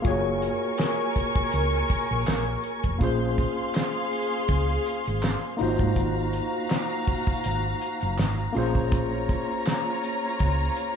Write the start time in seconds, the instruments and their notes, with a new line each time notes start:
0.02 fingered electric bass F#1, tine electric piano A#3 F4 F#4 G#4, string section A#4 G#5 C#6, kick, closed hi-hat
0.08 tine electric piano C#5
0.42 closed hi-hat
0.78 snare, clap, closed hi-hat
1.16 kick, closed hi-hat
1.36 kick
1.51 fingered electric bass C#2, closed hi-hat
1.90 kick, closed hi-hat
2.11 fingered electric bass A#1
2.27 fingered electric bass A#1, snare, clap, closed hi-hat
2.64 closed hi-hat
2.84 fingered electric bass F1, kick, closed hi-hat
2.99 fingered electric bass A#1, tine electric piano A#3 C#4 F4, string section G#4 F5 C6, kick, closed hi-hat
3.03 tine electric piano G#4 C5
3.38 kick, closed hi-hat
3.75 snare, clap, closed hi-hat
4.13 open hi-hat
4.48 fingered electric bass C#2, kick, closed hi-hat
4.86 closed hi-hat
5.05 fingered electric bass G#1, closed hi-hat
5.23 snare, clap, closed hi-hat
5.57 fingered electric bass G#1, tine electric piano A#3 D#4 F4, string section F#4 F5 A#5, open hi-hat
5.61 tine electric piano F#4 C5
5.79 fingered electric bass G#2, kick
5.96 fingered electric bass G#1, kick, closed hi-hat
6.33 closed hi-hat
6.69 snare, clap, closed hi-hat
7.08 kick, open hi-hat
7.27 kick
7.44 fingered electric bass G#1, closed hi-hat
7.81 closed hi-hat
8.01 fingered electric bass F#1, closed hi-hat
8.18 fingered electric bass G#1, snare, clap, closed hi-hat
8.53 fingered electric bass A#1, tine electric piano A#3 C#4 F4, string section F4 C#5 A#5, open hi-hat
8.57 tine electric piano G#4 C5
8.75 kick
8.92 kick, closed hi-hat
9.29 kick, closed hi-hat
9.65 snare, clap, closed hi-hat
10.04 closed hi-hat
10.39 fingered electric bass C#2, kick, closed hi-hat
10.77 closed hi-hat